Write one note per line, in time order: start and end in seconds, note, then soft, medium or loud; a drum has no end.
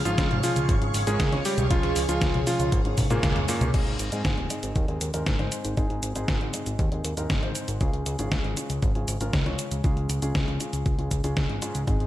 0.00 3.70 G#4 medium
0.00 3.70 C#5 medium
0.00 3.70 F5 medium
0.00 3.70 C#6 medium
0.05 0.16 G#1 medium
0.05 0.40 C#3 medium
0.05 0.35 F3 medium
0.05 0.40 G#3 medium
0.05 0.40 C#4 medium
0.05 0.40 F4 medium
0.05 0.35 F4 medium
0.05 0.40 G#4 loud
0.05 closed hi-hat soft
0.05 cabasa soft
0.18 0.28 C#2 loud
0.18 kick loud
0.18 snare loud
0.18 closed hi-hat medium
0.18 cabasa soft
0.31 0.41 G#1 medium
0.31 closed hi-hat soft
0.31 high conga medium
0.43 0.79 C#3 medium
0.43 0.73 F3 medium
0.43 0.79 G#3 medium
0.43 0.79 C#4 medium
0.43 0.73 F4 medium
0.43 0.79 F4 medium
0.43 0.79 G#4 medium
0.43 open hi-hat loud
0.43 cabasa medium
0.56 0.67 C#2 medium
0.56 closed hi-hat soft
0.56 cabasa soft
0.69 0.79 G#1 loud
0.69 kick loud
0.69 closed hi-hat medium
0.69 cabasa soft
0.82 0.92 G#1 medium
0.82 0.99 C#3 medium
0.82 0.99 G#3 medium
0.82 0.99 C#4 medium
0.82 0.99 F4 medium
0.82 0.99 G#4 medium
0.82 closed hi-hat soft
0.94 1.05 G#1 medium
0.94 open hi-hat loud
0.94 cabasa medium
1.07 1.17 G#1 medium
1.07 1.29 C#3 medium
1.07 1.29 G#3 medium
1.07 1.36 G#3 medium
1.07 1.29 C#4 medium
1.07 1.29 F4 medium
1.07 1.36 G#4 loud
1.07 1.29 A#4 loud
1.07 closed hi-hat soft
1.07 cabasa soft
1.20 1.30 C#2 loud
1.20 kick loud
1.20 snare loud
1.20 closed hi-hat medium
1.20 cabasa soft
1.32 1.43 C#2 medium
1.32 1.68 C#3 medium
1.32 1.68 G#3 medium
1.32 1.68 C#4 medium
1.32 1.68 F4 medium
1.32 1.68 C#5 medium
1.32 snare soft
1.32 closed hi-hat soft
1.45 1.65 G3 medium
1.45 1.65 G4 medium
1.45 open hi-hat loud
1.45 cabasa medium
1.58 1.68 C#2 medium
1.58 closed hi-hat soft
1.58 high conga medium
1.58 cabasa soft
1.71 1.81 C#2 loud
1.71 2.06 C#3 medium
1.71 2.00 F3 medium
1.71 2.06 G#3 medium
1.71 2.06 C#4 medium
1.71 2.06 F4 medium
1.71 2.00 F4 loud
1.71 2.06 G#4 loud
1.71 kick loud
1.71 closed hi-hat medium
1.71 cabasa soft
1.83 1.94 C#2 medium
1.83 snare soft
1.83 closed hi-hat soft
1.96 2.07 C#2 loud
1.96 open hi-hat loud
1.96 cabasa medium
2.09 2.19 C#2 medium
2.09 2.44 C#3 loud
2.09 2.38 F3 medium
2.09 2.44 G#3 medium
2.09 2.44 C#4 medium
2.09 2.38 F4 loud
2.09 2.44 F4 medium
2.09 2.44 G#4 loud
2.09 closed hi-hat soft
2.09 cabasa soft
2.21 2.32 C#2 loud
2.21 kick loud
2.21 snare loud
2.21 closed hi-hat medium
2.21 cabasa soft
2.34 2.45 C#2 medium
2.34 closed hi-hat soft
2.34 high conga medium
2.47 2.82 C#3 medium
2.47 2.76 F3 medium
2.47 2.82 G#3 medium
2.47 2.82 C#4 medium
2.47 2.76 F4 loud
2.47 2.82 F4 medium
2.47 2.82 G#4 medium
2.47 open hi-hat loud
2.47 cabasa medium
2.60 2.70 C#2 medium
2.60 closed hi-hat soft
2.60 cabasa soft
2.72 2.83 G#1 loud
2.72 kick loud
2.72 closed hi-hat loud
2.72 cabasa soft
2.85 2.95 G#1 medium
2.85 3.02 C#3 medium
2.85 3.02 G#3 medium
2.85 3.02 C#4 medium
2.85 3.02 F4 medium
2.85 3.02 G#4 medium
2.85 closed hi-hat soft
2.98 3.08 G#1 medium
2.98 kick medium
2.98 open hi-hat loud
2.98 high tom medium
2.98 high conga medium
2.98 cabasa medium
3.10 3.21 G#1 medium
3.10 3.40 A#2 medium
3.10 3.46 C#3 medium
3.10 3.46 G#3 medium
3.10 3.40 A#3 loud
3.10 3.46 C#4 medium
3.10 3.46 F4 medium
3.10 3.46 G#4 loud
3.10 closed hi-hat soft
3.10 high tom medium
3.10 cabasa soft
3.23 3.34 C#2 loud
3.23 kick loud
3.23 snare loud
3.23 closed hi-hat medium
3.23 mid tom medium
3.23 cabasa soft
3.36 3.46 C#2 medium
3.36 closed hi-hat soft
3.36 mid tom medium
3.49 3.66 G#2 loud
3.49 3.68 A#2 medium
3.49 3.66 G#3 medium
3.49 3.68 A#3 medium
3.49 3.66 C#4 medium
3.49 3.66 F4 medium
3.49 3.66 G#4 loud
3.49 open hi-hat loud
3.49 cabasa medium
3.61 3.72 C#2 medium
3.61 closed hi-hat soft
3.61 mid tom medium
3.61 high conga medium
3.61 cabasa soft
3.74 3.84 G#1 loud
3.74 4.09 G#2 medium
3.74 4.09 G#3 medium
3.74 4.09 C4 medium
3.74 4.09 D#4 medium
3.74 4.09 G#4 medium
3.74 kick loud
3.74 closed hi-hat medium
3.74 crash medium
3.74 cabasa soft
3.87 3.97 G#1 medium
3.87 closed hi-hat soft
3.99 4.10 G#1 medium
3.99 closed hi-hat medium
3.99 cabasa medium
4.12 4.47 G#2 medium
4.12 4.23 G#2 medium
4.12 4.47 G#3 medium
4.12 4.47 C4 medium
4.12 4.47 D#4 medium
4.12 4.47 G#4 loud
4.12 closed hi-hat medium
4.12 cabasa soft
4.25 4.35 G#1 loud
4.25 kick loud
4.25 snare loud
4.25 closed hi-hat medium
4.25 cabasa soft
4.38 4.48 D#1 medium
4.38 closed hi-hat soft
4.50 4.85 G#2 medium
4.50 4.85 G#3 medium
4.50 4.85 C4 medium
4.50 4.85 D#4 medium
4.50 4.85 G#4 medium
4.50 closed hi-hat medium
4.50 cabasa medium
4.63 4.73 G#1 medium
4.63 closed hi-hat medium
4.63 cabasa soft
4.76 4.86 D#2 loud
4.76 kick loud
4.76 closed hi-hat medium
4.76 cabasa soft
4.88 4.99 D#2 medium
4.88 5.06 G#2 medium
4.88 5.06 G#3 medium
4.88 5.06 C4 medium
4.88 5.06 D#4 medium
4.88 5.06 G#4 medium
4.88 closed hi-hat soft
5.01 5.12 D#2 medium
5.01 closed hi-hat loud
5.01 cabasa medium
5.14 5.24 D#2 medium
5.14 5.36 G#2 medium
5.14 5.36 G#3 medium
5.14 5.36 C4 medium
5.14 5.36 D#4 medium
5.14 5.36 A#4 loud
5.14 closed hi-hat medium
5.14 cabasa soft
5.27 5.37 G#1 loud
5.27 kick loud
5.27 snare loud
5.27 closed hi-hat medium
5.27 cabasa soft
5.39 5.50 G#1 medium
5.39 5.74 G#2 medium
5.39 5.74 G#3 medium
5.39 5.74 C4 medium
5.39 5.74 D#4 medium
5.39 5.74 C5 medium
5.39 snare soft
5.39 closed hi-hat soft
5.52 closed hi-hat medium
5.52 cabasa medium
5.65 5.75 G#1 medium
5.65 closed hi-hat medium
5.65 cabasa soft
5.77 5.88 G#1 loud
5.77 6.12 G#2 medium
5.77 6.12 G#3 medium
5.77 6.12 C4 medium
5.77 6.12 D#4 medium
5.77 6.12 G#4 medium
5.77 kick loud
5.77 closed hi-hat medium
5.77 cabasa soft
5.90 6.01 G#1 medium
5.90 closed hi-hat soft
6.03 6.13 G#1 medium
6.03 closed hi-hat medium
6.03 cabasa medium
6.16 6.26 G#1 medium
6.16 6.51 G#2 medium
6.16 6.51 G#3 medium
6.16 6.51 C4 medium
6.16 6.51 D#4 medium
6.16 6.51 G#4 loud
6.16 closed hi-hat medium
6.16 cabasa soft
6.28 6.39 G#1 loud
6.28 kick loud
6.28 snare loud
6.28 closed hi-hat medium
6.28 cabasa soft
6.41 6.51 G#1 medium
6.41 closed hi-hat soft
6.54 6.89 G#2 medium
6.54 6.89 G#3 medium
6.54 6.89 C4 medium
6.54 6.89 D#4 medium
6.54 6.89 G#4 medium
6.54 closed hi-hat loud
6.54 cabasa medium
6.66 6.77 G#1 medium
6.66 closed hi-hat medium
6.66 cabasa soft
6.79 6.90 D#2 loud
6.79 kick loud
6.79 closed hi-hat medium
6.79 cabasa soft
6.92 7.02 D#2 medium
6.92 7.09 G#2 medium
6.92 7.09 G#3 medium
6.92 7.09 C4 medium
6.92 7.09 D#4 medium
6.92 7.09 G#4 medium
6.92 closed hi-hat soft
7.04 7.15 D#2 medium
7.04 closed hi-hat medium
7.04 cabasa medium
7.17 7.28 D#2 medium
7.17 7.40 G#2 medium
7.17 7.40 G#3 medium
7.17 7.40 C4 medium
7.17 7.40 D#4 medium
7.17 7.40 A#4 loud
7.17 closed hi-hat medium
7.17 cabasa soft
7.30 7.40 G#1 loud
7.30 kick loud
7.30 snare loud
7.30 closed hi-hat medium
7.30 cabasa soft
7.43 7.53 G#1 medium
7.43 7.78 G#2 medium
7.43 7.78 G#3 medium
7.43 7.78 C4 medium
7.43 7.78 D#4 medium
7.43 7.78 C5 medium
7.43 closed hi-hat soft
7.55 closed hi-hat medium
7.55 cabasa medium
7.68 7.79 G#1 medium
7.68 closed hi-hat medium
7.68 cabasa soft
7.81 7.91 C#2 loud
7.81 8.16 C#3 medium
7.81 8.16 G#3 medium
7.81 8.16 C#4 medium
7.81 8.16 F4 medium
7.81 8.16 G#4 medium
7.81 kick loud
7.81 closed hi-hat medium
7.81 cabasa soft
7.93 8.04 C#2 medium
7.93 closed hi-hat soft
8.06 8.17 C#2 loud
8.06 closed hi-hat medium
8.06 cabasa medium
8.19 8.29 G#1 medium
8.19 8.54 C#3 medium
8.19 8.54 G#3 medium
8.19 8.54 C#4 medium
8.19 8.54 F4 medium
8.19 8.54 G#4 loud
8.19 closed hi-hat medium
8.19 cabasa soft
8.32 8.42 C#2 loud
8.32 kick loud
8.32 snare loud
8.32 closed hi-hat medium
8.32 cabasa soft
8.44 8.55 G#1 medium
8.44 closed hi-hat soft
8.57 8.92 C#3 medium
8.57 8.92 G#3 medium
8.57 8.92 C#4 medium
8.57 8.92 F4 medium
8.57 8.92 G#4 medium
8.57 closed hi-hat medium
8.57 cabasa medium
8.70 8.80 C#2 medium
8.70 closed hi-hat medium
8.70 cabasa soft
8.83 8.93 G#1 loud
8.83 kick loud
8.83 closed hi-hat medium
8.83 cabasa soft
8.95 9.06 G#1 medium
8.95 9.12 C#3 medium
8.95 9.12 G#3 medium
8.95 9.12 C#4 medium
8.95 9.12 F4 medium
8.95 9.12 G#4 medium
8.95 closed hi-hat soft
9.08 9.18 G#1 medium
9.08 closed hi-hat medium
9.08 cabasa medium
9.21 9.31 G#1 medium
9.21 9.43 C#3 medium
9.21 9.43 G#3 medium
9.21 9.43 C#4 medium
9.21 9.43 F4 medium
9.21 9.43 A#4 loud
9.21 closed hi-hat medium
9.21 cabasa soft
9.33 9.44 C#2 loud
9.33 kick loud
9.33 snare loud
9.33 closed hi-hat medium
9.33 cabasa soft
9.46 9.56 C#2 medium
9.46 9.81 C#3 medium
9.46 9.81 G#3 medium
9.46 9.81 C#4 medium
9.46 9.81 F4 medium
9.46 9.81 C#5 medium
9.46 snare soft
9.46 closed hi-hat soft
9.59 closed hi-hat medium
9.59 cabasa medium
9.71 9.82 C#2 medium
9.71 closed hi-hat medium
9.71 cabasa soft
9.84 9.95 C#2 loud
9.84 10.19 C#3 medium
9.84 10.19 G#3 medium
9.84 10.19 C#4 medium
9.84 10.19 F4 medium
9.84 10.19 G#4 medium
9.84 kick loud
9.84 closed hi-hat soft
9.84 cabasa soft
9.97 10.07 C#2 medium
9.97 closed hi-hat soft
10.10 10.20 C#2 medium
10.10 closed hi-hat medium
10.10 cabasa medium
10.22 10.33 C#2 medium
10.22 10.57 C#3 medium
10.22 10.57 G#3 medium
10.22 10.57 C#4 medium
10.22 10.57 F4 medium
10.22 10.57 G#4 loud
10.22 closed hi-hat medium
10.22 cabasa soft
10.35 10.45 C#2 loud
10.35 kick loud
10.35 snare loud
10.35 closed hi-hat medium
10.35 cabasa soft
10.48 10.58 C#2 medium
10.48 closed hi-hat soft
10.60 10.96 C#3 medium
10.60 10.96 G#3 medium
10.60 10.96 C#4 medium
10.60 10.96 F4 medium
10.60 10.96 G#4 medium
10.60 closed hi-hat medium
10.60 cabasa medium
10.73 10.84 C#2 medium
10.73 closed hi-hat medium
10.73 cabasa soft
10.86 10.96 C#2 loud
10.86 kick loud
10.86 closed hi-hat soft
10.86 cabasa soft
10.99 11.09 C#2 medium
10.99 11.16 C#3 medium
10.99 11.16 G#3 medium
10.99 11.16 C#4 medium
10.99 11.16 F4 medium
10.99 11.16 G#4 medium
10.99 closed hi-hat soft
11.11 11.22 C#2 medium
11.11 kick medium
11.11 closed hi-hat medium
11.11 cabasa medium
11.24 11.34 C#2 medium
11.24 11.59 C#3 medium
11.24 11.59 G#3 medium
11.24 11.59 C#4 medium
11.24 11.59 F4 medium
11.24 11.59 G#4 loud
11.24 closed hi-hat medium
11.24 cabasa soft
11.37 11.47 C#2 loud
11.37 kick loud
11.37 snare loud
11.37 closed hi-hat soft
11.37 cabasa soft
11.49 11.60 G#1 medium
11.49 closed hi-hat soft
11.62 11.79 G#2 loud
11.62 11.79 G#3 medium
11.62 11.79 C#4 medium
11.62 11.79 F4 medium
11.62 11.79 G#4 loud
11.62 closed hi-hat medium
11.62 cabasa medium
11.75 11.85 C#2 medium
11.75 closed hi-hat medium
11.75 cabasa soft
11.88 11.98 G#1 loud
11.88 12.07 G#2 medium
11.88 12.07 G#3 medium
11.88 12.07 C4 medium
11.88 12.07 D#4 medium
11.88 12.07 G#4 medium
11.88 12.07 C5 medium
11.88 12.07 D#5 medium
11.88 12.07 C6 medium
11.88 kick loud
11.88 closed hi-hat soft
11.88 cabasa soft
12.00 12.07 G#1 medium
12.00 closed hi-hat soft